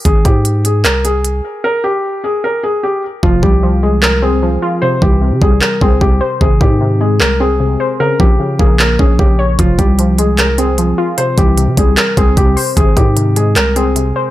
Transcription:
<<
  \new Staff \with { instrumentName = "Felt piano" } { \time 4/4 \key f \minor \tempo 4 = 151 aes'8 g'4 aes'8 bes'8 aes'4. | bes'8 g'4 aes'8 bes'8 aes'8 g'8 r8 | f'8 g'4 aes'8 bes'8 aes'4. | c''8 g'4 aes'8 bes'8 aes'8 g'8 r8 |
aes'8 g'4 aes'8 bes'8 aes'4. | bes'8 g'4 aes'8 bes'8 aes'8 g'8 r8 | f'8 g'4 aes'8 bes'8 aes'4. | c''8 g'4 aes'8 bes'8 aes'8 g'8 r8 |
aes'8 g'4 aes'8 bes'8 aes'4. | }
  \new Staff \with { instrumentName = "Synth pluck" } { \clef bass \time 4/4 \key f \minor r1 | r1 | f8 g8 f8 aes4 c'8 f8 f'8 | c8 e8 c8 g4 c'8 c8 c''8 |
c8 ees8 c8 aes4 c'8 c8 c''8 | des8 f8 des8 bes4 des'8 des8 des''8 | f8 g8 f8 aes4 c'8 f8 f'8 | c8 e8 c8 g4 c'8 c8 c''8 |
c8 ees8 c8 aes4 c'8 c8 c''8 | }
  \new Staff \with { instrumentName = "808-style bass" } { \clef bass \time 4/4 \key f \minor aes,,8 aes,4. c,4. r8 | r1 | f,,8 c,2. r8 | r8 c,8. c16 c,8 r8 c,8 c,8 r8 |
aes,,8 aes,4. c,4. r8 | r8 bes,,8 r8 bes,,4 bes,,8 bes,,4 | f,,8 c,2. r8 | r8 c,8. c16 c,8 r8 c,8 c,8 r8 |
aes,,8 aes,4. c,4. r8 | }
  \new DrumStaff \with { instrumentName = "Drums" } \drummode { \time 4/4 <hh bd>8 <hh bd>8 hh8 hh8 <hc hh>8 hh8 hh4 | r4 r4 r4 r4 | bd8 bd8 r4 hc4 r4 | r8 bd8 r8 bd8 hc8 bd8 bd4 |
bd8 bd8 r4 hc4 r4 | r8 bd8 r8 bd8 hc8 bd8 bd4 | <hh bd>8 <hh bd>8 hh8 hh8 <hc hh>8 hh8 hh4 | hh8 <hh bd>8 hh8 <hh bd>8 <hc hh>8 <hh bd>8 <hh bd>8 hho8 |
<hh bd>8 <hh bd>8 hh8 hh8 <hc hh>8 hh8 hh4 | }
>>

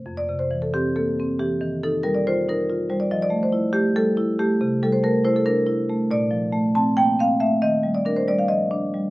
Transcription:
<<
  \new Staff \with { instrumentName = "Marimba" } { \time 7/8 \key f \major \tempo 4 = 139 r16 d''8 c''8 a'16 g'8 a'4 g'8~ | g'8 a'8 bes'16 d''16 c''8 bes'4 c''16 d''16 | ees''16 d''8 c''8. g'8 a'4 g'8~ | g'8 a'16 c''16 bes'8 c''16 a'16 bes'4. |
d''4. a''8 g''8 f''8 e''8 | ees''8. d''16 bes'16 c''16 d''16 f''16 ees''4. | }
  \new Staff \with { instrumentName = "Marimba" } { \time 7/8 \key f \major f,8 c8 e8 c'8 bes8 c'8 e8 | ees8 ees'8 g8 f'8 ees'8 f'8 g8 | f8 a8 e'8 a8 g8 e'8 a8 | c8 g8 a8 e'8 d'8 e'8 a8 |
bes,8 f8 a8 c'8 bes8 c'8 a8 | ees8 g8 d'8 g8 f8 d'8 g8 | }
>>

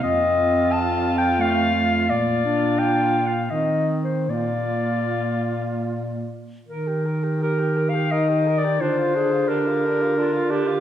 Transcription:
<<
  \new Staff \with { instrumentName = "Clarinet" } { \time 3/4 \key ees \major \tempo 4 = 86 ees''4 \tuplet 3/2 { a''4 g''8 } f''4 | d''4 \tuplet 3/2 { g''4 f''8 ees''4 c''8 } | d''2~ d''8 r8 | r4 \tuplet 3/2 { bes'4 f''8 ees''4 d''8 } |
c''4 bes'2 | }
  \new Staff \with { instrumentName = "Alto saxophone" } { \time 3/4 \key ees \major f'2. | f'2 ees'8 r8 | f'2~ f'8 r8 | bes'16 g'16 bes'16 g'16 bes'16 g'16 bes'16 g'16 bes'16 g'16 bes'16 g'16 |
d'16 f'16 d'16 f'16 d'16 f'16 d'16 f'16 d'16 f'16 d'16 f'16 | }
  \new Staff \with { instrumentName = "Clarinet" } { \time 3/4 \key ees \major c'2 a8 a8 | bes8 d'4 r8 c'4 | bes2~ bes8 r8 | bes'4 g'4 ees'4 |
f'8 aes'8 g'4 f'8 g'8 | }
  \new Staff \with { instrumentName = "Baritone saxophone" } { \clef bass \time 3/4 \key ees \major f,2. | bes,2 ees4 | bes,2~ bes,8 r8 | ees2. |
d2. | }
>>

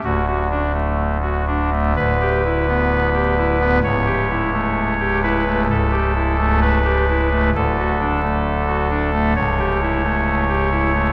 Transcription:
<<
  \new Staff \with { instrumentName = "Pipe organ" } { \time 4/4 \key d \major \tempo 4 = 65 << { fis'2 b'2 | cis''4. b'8 a'4 b'4 | a'2 cis''2 | } \\ { d,16 fis'16 d'16 a8 fis'16 d'16 a16 d,16 g'16 e'16 b8 g'16 e'16 b16 | cis,16 g'16 e'16 a8 g'16 e'16 a16 cis,16 g'16 e'16 a8 g'16 e'16 a16 | d,16 fis'16 d'16 a8 fis'16 d'16 a16 cis,16 g'16 e'16 a8 g'16 e'16 a16 | } >> }
  \new Staff \with { instrumentName = "Pipe organ" } { \clef bass \time 4/4 \key d \major d,,2 d,,2 | cis,,2 cis,,2 | d,,2 cis,,2 | }
>>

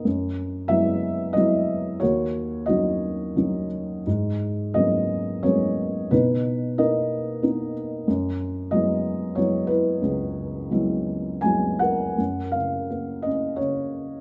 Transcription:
<<
  \new Staff \with { instrumentName = "Felt piano" } { \time 3/4 \key fis \mixolydian \tempo 4 = 90 << { r4 e''4 dis''4 | cis''4 dis''4. r8 | r4 dis''4 cis''4 | b'4 dis''4. r8 |
r4 dis''4 cis''8 b'8~ | b'2 gis''8 fis''8~ | \key fis \major fis''8 eis''4 dis''8 cis''4 | } \\ { r2. | fis'4 fis'4. r8 | r2. | dis'4 ais'4. r8 |
r2 r8 e'8~ | e'2 r8 ais'8~ | ais'4 r2 | } >> }
  \new Staff \with { instrumentName = "Felt piano" } { \time 3/4 \key fis \mixolydian fis,4 <fis gis b e'>4 <fis gis b e'>4 | dis,4 <fis cis' dis'>4 <fis cis' dis'>4 | gis,4 <fis gis ais b cis'>4 <fis gis ais b cis'>4 | b,4 <ais b dis'>4 <ais b dis'>4 |
fis,4 <fis gis b e'>4 <fis gis b e'>4 | cis,4 <fis gis b e'>4 <fis gis b e'>4 | \key fis \major fis,8 cis8 ais8 cis'8 cis4 | }
>>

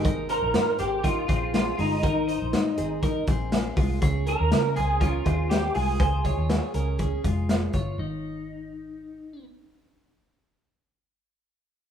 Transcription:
<<
  \new Staff \with { instrumentName = "Clean electric guitar" } { \time 4/4 \key aes \major \tempo 4 = 121 r8 bes'4 g'8 f'4 f'8 ees'8~ | ees'2~ ees'8 r4. | r8 bes'4 aes'8 f'4 g'8 aes'8~ | aes'2. r4 |
r1 | r1 | }
  \new Staff \with { instrumentName = "Clean electric guitar" } { \time 4/4 \key aes \major <ees' bes'>8 <ees' c''>4 <c' aes'>8 <ees' bes'>8 <c' aes'>4 <aes f'>8 | <ees' bes'>8 <ees' c''>4 <c' aes'>8 <ees' bes'>8 <c' aes'>4 <aes f'>8 | <des' aes'>8 <des' bes'>4 <c' aes'>8 <des' bes'>8 <c' aes'>4 <aes f'>8 | <f' c''>8 <f' des''>4 <des' bes'>8 <des' aes'>8 <aes f'>4 <f' des''>8 |
ees'2. r4 | r1 | }
  \new Staff \with { instrumentName = "Picked electric bass" } { \clef bass \time 4/4 \key aes \major aes,,8. bes,,16 aes,8 aes,,4 bes,,4 g,,8 | aes,,8. bes,,16 aes,8 aes,,4 bes,,4 c,8 | des,8. ees,16 des8 des,4 ees,4 c,8 | des,8. ees,8 r16 des,4 f,,4 g,,8 |
aes,,1~ | aes,,1 | }
  \new DrumStaff \with { instrumentName = "Drums" } \drummode { \time 4/4 <hh bd>8 hh8 <hh sn>8 hh8 <hh bd>8 <hh bd>8 <hh sn>8 hho8 | <hh bd>8 hh8 <hh sn>8 hh8 <hh bd>8 <hh bd>8 <hh sn>8 <hho bd>8 | <hh bd>8 hh8 <hh sn>8 hh8 <hh bd>8 <hh bd>8 <hh sn>8 hho8 | <hh bd>8 <hh bd>8 <hh sn>8 hh8 <hh bd>8 <hh bd>8 <hh sn>8 <hh bd>8 |
r4 r4 r4 r4 | r4 r4 r4 r4 | }
>>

